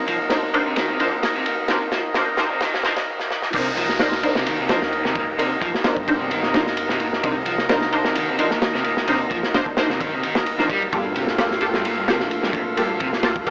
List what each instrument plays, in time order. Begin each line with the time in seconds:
Already playing: upright bass C2, tonewheel organ A#3 D#4
0.08 overdriven electric guitar F3, ride
0.30 synth stab D4 D#4 A#4 C5, snare, ride
0.54 synth stab D4 D#4 A#4 C5, ride
0.66 overdriven electric guitar C3
0.76 overdriven electric guitar D#3, snare, ride
0.90 overdriven electric guitar C3
1.00 overdriven electric guitar F3, synth stab D4 D#4 A#4 C5, ride
1.12 upright bass D#2
1.23 snare, ride
1.36 overdriven electric guitar C3
1.46 overdriven electric guitar A#2, ride
1.68 overdriven electric guitar C3, synth stab D4 D#4 A#4 C5, snare, ride
1.92 overdriven electric guitar F3, snare, ride
2.14 upright bass G1, synth stab D4 D#4 A#4 C5, snare, ride
2.37 synth stab D4 D#4 A#4 C5, snare, ride
2.52 overdriven electric guitar C3
2.61 overdriven electric guitar D#3, snare, ride
2.74 overdriven electric guitar C3, snare
2.83 upright bass G1, overdriven electric guitar F3, synth stab D4 D#4 A#4 C5, snare, ride
2.96 snare, ride
3.20 snare
3.31 snare
3.42 snare
3.53 upright bass C2, overdriven electric guitar C3, tonewheel organ A#3 D#4, synth stab D4 D#4 A#4 C5, kick, crash, ride, downlifter
3.77 overdriven electric guitar F3, ride
3.89 snare
3.99 synth stab D4 D#4 A#4 C5, snare, ride
4.12 snare
4.23 synth stab D4 D#4 A#4 C5, ride
4.35 overdriven electric guitar C3, snare
4.46 overdriven electric guitar D#3, ride
4.59 overdriven electric guitar C3
4.69 overdriven electric guitar F3, synth stab D4 D#4 A#4 C5, snare, ride
4.82 upright bass D#2, snare
4.92 ride
5.05 overdriven electric guitar C3, snare
5.15 overdriven electric guitar A#2, kick, ride
5.38 overdriven electric guitar C3, synth stab D4 D#4 A#4 C5, ride
5.62 overdriven electric guitar F3, kick, ride
5.75 snare
5.84 upright bass G1, synth stab D4 D#4 A#4 C5, snare, ride
5.97 kick
6.08 synth stab D4 D#4 A#4 C5, kick, ride
6.20 overdriven electric guitar C3
6.31 overdriven electric guitar D#3, ride
6.43 overdriven electric guitar C3, snare
6.54 overdriven electric guitar F3, synth stab D4 D#4 A#4 C5, snare, ride
6.67 snare
6.77 ride
6.89 overdriven electric guitar C3, snare
7.00 overdriven electric guitar A#2, ride
7.13 snare
7.23 upright bass C2, overdriven electric guitar C3, synth stab D4 D#4 A#4 C5, kick, ride
7.46 overdriven electric guitar F3, ride
7.58 snare
7.69 synth stab D4 D#4 A#4 C5, snare, ride
7.81 snare
7.92 synth stab D4 D#4 A#4 C5, ride
8.04 overdriven electric guitar C3, snare
8.15 overdriven electric guitar D#3, ride
8.28 overdriven electric guitar C3
8.39 overdriven electric guitar F3, synth stab D4 D#4 A#4 C5, ride
8.51 upright bass D#2, snare
8.62 snare, ride
8.75 overdriven electric guitar C3, snare
8.84 overdriven electric guitar A#2, ride
8.97 snare
9.08 overdriven electric guitar C3, synth stab D4 D#4 A#4 C5, ride
9.31 overdriven electric guitar F3, kick, ride
9.43 snare
9.54 upright bass G1, synth stab D4 D#4 A#4 C5, snare, ride
9.66 kick
9.77 synth stab D4 D#4 A#4 C5, snare, ride
9.90 overdriven electric guitar C3, snare
10.00 overdriven electric guitar D#3, kick, ride
10.13 overdriven electric guitar C3
10.23 overdriven electric guitar D#3, ride
10.35 snare
10.46 ride
10.59 overdriven electric guitar F3, synth stab D4 D#4 A#4 C5, snare
10.70 overdriven electric guitar G3, kick, ride
10.82 ride
10.92 upright bass G1, overdriven electric guitar G2, tonewheel organ A#2 A3 F4, synth stab A#3 F4 G4 A4, kick, ride
11.16 overdriven electric guitar C3, ride
11.27 snare
11.38 synth stab A#3 F4 G4 A4, snare, ride
11.51 snare
11.61 synth stab A#3 F4 G4 A4, ride
11.74 overdriven electric guitar G2, snare
11.85 overdriven electric guitar A#2, ride
11.97 overdriven electric guitar G2
12.08 overdriven electric guitar C3, synth stab A#3 F4 G4 A4, snare, ride
12.20 upright bass A#1, snare
12.31 ride
12.43 overdriven electric guitar G2, snare
12.53 overdriven electric guitar F2, kick, ride
12.77 overdriven electric guitar G2, synth stab A#3 F4 G4 A4, ride
13.00 overdriven electric guitar C3, kick, ride
13.13 snare
13.23 upright bass D2, synth stab A#3 F4 G4 A4, snare, ride
13.36 kick
13.47 synth stab A#3 F4 G4 A4, kick, ride